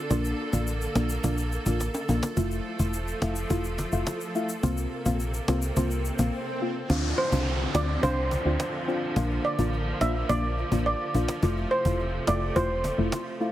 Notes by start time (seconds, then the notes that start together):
Already playing: D3 A4
0.10 A#1 A#3 D4 F4, cajon bass, shaker
0.25 shaker
0.52 A1 A#3 D4 F4, cajon bass, shaker
0.67 shaker
0.81 shaker
0.95 A#1 A#3 D4 F4, cajon slap
1.09 shaker
1.24 A#1 A#3 D4 F4, cajon bass, shaker
1.38 shaker
1.52 shaker
1.66 A1 A#3 D4 F4, cajon bass, shaker
1.80 cajon slap, shaker
1.94 high timbale, shaker
2.08 A#1 A#3 D4 F4, cajon bass, high timbale, shaker
2.23 cajon slap, shaker
2.37 F1 F3 A3 E4 F4, cajon bass, shaker
2.51 shaker
2.79 E1 A3 E4 F4, cajon bass, shaker
2.94 shaker
3.08 shaker
3.22 F1 A3 E4 F4, cajon slap
3.36 shaker
3.50 E1 A3 E4 F4, cajon bass, shaker
3.64 shaker
3.78 cajon bass, cajon slap, shaker
3.92 F1 A3 E4 F4, shaker
4.07 cajon slap, shaker
4.21 shaker
4.35 A3 E4 F4, shaker
4.49 shaker
4.63 C2 C3 A#3 C4 F4, cajon bass, swell, shaker
4.77 shaker
5.06 A#1 A#3 C4 F4, cajon bass, shaker
5.20 shaker
5.34 shaker
5.48 C2 A#3 C4 F4, cajon slap
5.62 shaker
5.76 C2 A#3 C4 F4, cajon bass, shaker
5.91 shaker
6.05 shaker
6.19 A#1 A#3 C4 F4, cajon bass, shaker
6.61 A#3 C4 F4
6.89 D2 D3 F3 C4 D4 F4, cajon bass, downlifter
7.18 C5, cajon slap
7.32 C2 C4 D4 F4, cajon bass
7.47 cajon slap
7.74 D2 C4 D4 F4 D5, cajon slap
8.03 C2 C4 D4 F4 C5, cajon bass
8.31 cajon bass, cajon slap
8.45 D2 C4 D4 F4
8.60 cajon slap
8.88 C4 D4 F4, cajon slap
9.16 A#1 A#3 D4 F4, cajon bass
9.30 cajon slap
9.45 D5, cajon slap
9.58 A1 A#3 D4 F4, cajon bass
9.73 cajon slap
10.01 A#1 A#3 D4 F4 E5, cajon slap
10.29 A#1 A#3 D4 F4 D5, cajon bass
10.58 cajon slap
10.71 A1 A#3 D4 F4, cajon bass
10.86 D5, cajon slap
11.14 A#1 A#3 D4 F4, cajon bass
11.28 cajon slap
11.42 F1 C3 A3 E4 F4, cajon bass
11.57 cajon slap
11.71 C5, cajon slap
11.85 E1 A3 E4 F4, cajon bass
11.99 cajon slap
12.27 F1 A3 E4 F4 D5, cajon slap
12.55 E1 A3 E4 F4 C5, cajon bass
12.84 cajon bass, cajon slap
12.98 F1 A3 E4 F4
13.12 cajon slap
13.40 A3 E4 F4, cajon slap